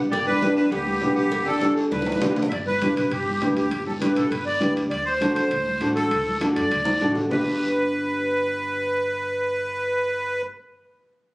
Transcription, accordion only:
0.11 0.26 D5 loud
0.26 0.54 B4 loud
0.56 0.70 B4 medium
0.71 1.15 G4 medium
1.16 1.47 G4 medium
1.46 1.74 A4 loud
1.91 2.33 B4 medium
2.48 2.58 D5 loud
2.48 2.52 E5 medium
2.67 2.95 B4 loud
2.97 3.12 B4 medium
3.12 3.54 G4 medium
3.56 3.84 G4 medium
3.86 3.93 A4 medium
4.01 4.16 B4 medium
4.16 4.30 A4 medium
4.30 4.44 B4 medium
4.46 4.74 D5 loud
4.90 5.04 D5 loud
5.05 5.33 C5 medium
5.35 5.91 C5 medium
5.95 6.38 A4 medium
6.40 6.47 A4 medium
6.56 7.12 D5 medium
7.30 10.42 B4 medium

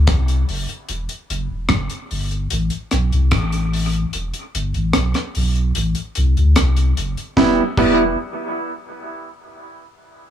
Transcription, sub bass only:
0.09 0.44 C2 medium
0.49 0.67 F#1 medium
0.90 1.08 E1 loud
1.30 1.48 F#1 loud
1.51 1.68 E1 medium
1.71 1.89 F#1 medium
2.12 2.47 G1 medium
2.52 2.70 A1 loud
2.93 3.11 B1 medium
3.13 3.31 C2 medium
3.33 4.05 A1 medium
4.15 4.32 E1 loud
4.55 4.73 G1 loud
4.76 4.93 A1 medium
4.96 5.14 B1 medium
5.36 5.72 B1 medium
5.77 5.95 A1 loud
6.18 6.35 C2 loud
6.38 6.55 D2 medium
6.57 6.93 C2 medium
6.98 7.16 F#1 medium
7.38 7.60 E1 loud
7.78 8.16 E1 loud

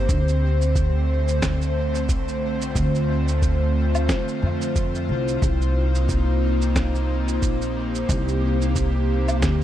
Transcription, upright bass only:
0.09 2.09 D2 loud
2.09 2.73 C2 loud
2.75 4.06 D2 medium
4.42 5.06 F2 medium
5.09 5.39 C2 medium
5.42 7.42 C2 loud
7.42 8.06 A#1 loud
8.09 9.42 C2 loud
9.42 9.64 D2 medium

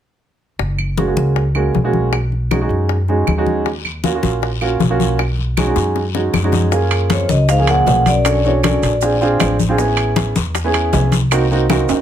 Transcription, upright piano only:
0.97 1.04 G#3 medium
0.97 1.04 A#3 medium
0.97 1.05 C#4 medium
0.97 1.04 F#4 medium
1.07 1.41 G#3 medium
1.07 1.41 A#3 medium
1.07 1.41 C#4 medium
1.07 1.41 F#4 medium
1.55 1.75 G#3 medium
1.55 1.75 A#3 medium
1.55 1.75 C#4 medium
1.55 1.75 F#4 medium
1.83 2.12 G#3 medium
1.83 2.13 A#3 medium
1.83 2.13 C#4 medium
1.83 2.13 F#4 medium
2.51 2.58 G#3 medium
2.51 2.58 C#4 medium
2.51 2.58 D#4 medium
2.51 2.58 F#4 medium
2.60 2.94 G#3 medium
2.60 2.94 C#4 medium
2.60 2.94 D#4 medium
2.60 2.95 F#4 medium
3.09 3.29 G#3 medium
3.09 3.29 C#4 medium
3.09 3.29 D#4 medium
3.09 3.29 F#4 medium
3.37 3.66 G#3 medium
3.37 3.66 C#4 medium
3.37 3.66 D#4 medium
3.37 3.66 F#4 medium
4.04 4.11 A#3 medium
4.04 4.11 C#4 medium
4.04 4.11 F4 medium
4.04 4.11 F#4 medium
4.15 4.48 A#3 medium
4.15 4.48 C#4 medium
4.15 4.48 F4 medium
4.15 4.48 F#4 medium
4.61 4.81 A#3 medium
4.61 4.82 C#4 medium
4.61 4.82 F4 medium
4.61 4.82 F#4 medium
4.90 5.19 A#3 medium
4.90 5.19 C#4 medium
4.90 5.19 F4 medium
4.90 5.19 F#4 medium
5.57 5.64 G#3 medium
5.57 5.64 C#4 medium
5.57 5.64 D#4 medium
5.57 5.64 F#4 medium
5.67 6.00 G#3 medium
5.67 6.00 C#4 medium
5.67 6.01 D#4 medium
5.67 6.01 F#4 medium
6.14 6.35 G#3 medium
6.14 6.35 C#4 medium
6.14 6.35 D#4 medium
6.14 6.35 F#4 medium
6.43 6.72 G#3 medium
6.43 6.71 C#4 medium
6.43 6.73 D#4 medium
6.43 6.73 F#4 medium
6.71 7.25 A#3 medium
6.71 7.26 C#4 medium
6.71 7.26 F4 medium
6.71 7.26 G#4 medium
7.58 8.06 F3 medium
7.58 8.05 A#3 medium
7.58 8.05 C#4 medium
7.58 8.06 G#4 medium
8.25 8.39 C#4 medium
8.25 8.39 D4 medium
8.25 8.39 F#4 medium
8.25 8.39 A4 medium
8.44 8.58 C#4 medium
8.44 8.58 D4 medium
8.44 8.58 F#4 medium
8.44 8.58 A4 medium
8.63 8.90 C#4 medium
8.63 8.90 D4 medium
8.63 8.91 F#4 medium
8.63 8.91 A4 medium
9.02 9.15 C4 medium
9.02 9.16 D4 medium
9.02 9.16 F4 medium
9.02 9.16 G#4 medium
9.21 9.55 C4 medium
9.21 9.55 D4 medium
9.21 9.55 F4 medium
9.21 9.55 G#4 loud
9.69 9.76 C4 medium
9.69 9.76 D4 medium
9.69 9.76 F4 medium
9.69 9.76 G#4 medium
9.78 10.32 B3 medium
9.78 10.32 C#4 medium
9.78 10.33 E4 medium
9.78 10.33 G#4 medium
10.64 11.11 B3 medium
10.64 11.12 C#4 medium
10.64 11.12 E4 medium
10.64 11.12 G#4 loud
11.32 11.45 A#3 medium
11.32 11.45 C4 medium
11.32 11.45 D#4 medium
11.32 11.45 F#4 loud
11.51 11.64 A#3 medium
11.51 11.64 C4 medium
11.51 11.65 D#4 medium
11.51 11.65 F#4 medium
11.69 11.96 A#3 medium
11.69 11.97 C4 medium
11.69 11.97 D#4 medium
11.69 11.97 F#4 medium

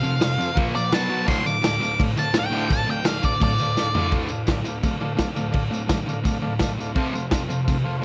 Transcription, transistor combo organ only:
0.02 0.16 F4 medium
0.02 0.15 A4 medium
0.02 0.15 C5 medium
0.19 0.32 F4 medium
0.19 0.32 A4 medium
0.19 0.32 C5 medium
0.38 0.51 F4 loud
0.38 0.51 A4 medium
0.38 0.51 C5 loud
0.54 0.68 F4 loud
0.54 0.67 A#4 loud
0.54 0.68 F5 loud
0.75 0.87 F4 medium
0.75 0.87 A#4 medium
0.75 0.87 F5 medium
0.89 1.03 F#4 loud
0.89 1.03 B4 loud
0.89 1.03 F#5 loud
1.09 1.22 F#4 medium
1.09 1.22 B4 medium
1.09 1.22 F#5 medium
1.25 1.38 A4 loud
1.25 1.38 D5 medium
1.25 1.39 F5 loud
1.45 1.57 A4 medium
1.45 1.57 D5 medium
1.45 1.58 F5 medium
1.65 1.76 A4 medium
1.65 1.77 D5 medium
1.65 1.76 F5 medium
1.82 1.94 A4 medium
1.82 1.93 D5 medium
1.82 1.94 F5 medium
1.99 2.11 A4 loud
1.99 2.11 D5 medium
1.99 2.11 F5 loud
2.17 2.29 A4 medium
2.17 2.29 D5 medium
2.17 2.30 F5 medium
2.37 2.48 A4 loud
2.37 2.48 D5 loud
2.37 2.48 F5 loud
2.54 2.66 A4 medium
2.54 2.65 D5 medium
2.54 2.65 F5 medium
2.70 2.82 A4 loud
2.70 2.82 D5 loud
2.70 2.82 F5 loud
2.89 3.01 A4 medium
2.89 3.00 D5 medium
2.89 3.01 F5 medium
3.08 3.19 A4 medium
3.08 3.18 D5 medium
3.08 3.19 F5 loud
3.23 3.35 A4 medium
3.23 3.36 D5 medium
3.23 3.35 F5 medium
3.41 3.53 A4 loud
3.41 3.53 D5 medium
3.41 3.53 F5 loud
3.61 3.72 A4 medium
3.61 3.72 D5 medium
3.61 3.72 F5 medium
3.77 3.90 A4 loud
3.77 3.89 D5 loud
3.77 3.90 F5 loud
3.96 4.07 A4 loud
3.96 4.08 D5 medium
3.96 4.07 F5 loud
4.10 4.23 A4 loud
4.10 4.23 D5 loud
4.10 4.23 F5 loud
4.31 4.43 A4 medium
4.31 4.42 D5 medium
4.31 4.43 F5 loud
4.50 4.61 A4 medium
4.50 4.61 D5 medium
4.50 4.61 F5 loud
4.68 4.78 A4 medium
4.68 4.78 D5 medium
4.68 4.78 F5 loud
4.85 4.96 A4 medium
4.85 4.96 D5 medium
4.85 4.96 F5 loud
4.99 5.13 A4 loud
4.99 5.12 D5 loud
4.99 5.13 F5 loud
5.16 5.29 A4 loud
5.16 5.29 D5 loud
5.16 5.29 F5 loud
5.35 5.47 A4 medium
5.35 5.47 D5 medium
5.35 5.48 F5 loud
5.50 5.64 A4 loud
5.50 5.64 D5 loud
5.50 5.64 F5 loud
5.69 5.82 A4 medium
5.69 5.83 D5 medium
5.69 5.83 F5 loud
5.86 6.00 A4 medium
5.86 6.01 D5 medium
5.86 6.00 F5 loud
6.08 6.20 A4 medium
6.08 6.20 D5 medium
6.08 6.19 F5 loud
6.26 6.37 A4 medium
6.26 6.38 D5 medium
6.26 6.38 F5 medium
6.42 6.55 A4 loud
6.42 6.54 D5 loud
6.42 6.55 F5 loud
6.59 6.73 A4 loud
6.59 6.73 D5 loud
6.59 6.72 F5 loud
6.81 6.92 A4 medium
6.81 6.92 D5 medium
6.81 6.92 F5 loud
6.95 7.08 A4 loud
6.95 7.08 C5 loud
6.95 7.08 F5 loud
7.14 7.26 A4 medium
7.14 7.26 C5 medium
7.14 7.26 F5 loud
7.30 7.43 A4 medium
7.30 7.43 C5 medium
7.30 7.43 F5 loud
7.48 7.61 A4 medium
7.48 7.61 C5 medium
7.48 7.61 F5 loud
7.64 7.78 A4 medium
7.64 7.78 C5 medium
7.64 7.78 F5 medium
7.84 7.97 A4 loud
7.84 7.97 C5 loud
7.84 7.97 F5 loud
7.98 8.04 A4 loud
7.98 8.04 C5 loud
7.98 8.04 F5 loud

